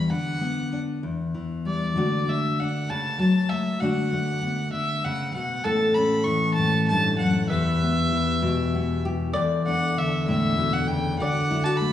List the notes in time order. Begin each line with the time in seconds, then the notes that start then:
Already playing: E2 G3 E4
0.10 D3 F#5
0.41 B3
0.72 D4
1.03 E2
1.34 E3
1.65 G3 D5
1.96 D3 A3 D4 F#4
2.28 A3 E5
2.60 D4 F#5
2.90 C#3 A5
3.19 F#3 A5
3.49 A3 E5
3.80 D3 A3 D4 F#4 F#5
4.12 A3
4.42 B3
4.73 D3 E5
5.05 C#3 F#5
5.34 B2 F#5
5.64 A2 E3 C#4 A4 A5
5.94 C#4 B5
6.24 E3 C#6
6.54 A5
6.58 A2
6.88 G2 A5
7.19 F#2 F#5
7.49 E2 B3 G4 B4 E5
7.84 B3
8.12 E3
8.42 B2
8.75 B3
9.05 G4
9.33 E2 A4 D5
9.66 D4 F#5
9.98 D3 E5
10.28 A2 E5
10.58 B2
10.73 F#5
10.88 C#3 G5
11.19 D2 D3 F#4 D5 F#5
11.51 E4
11.64 F#4 A5
11.77 B5
11.81 A3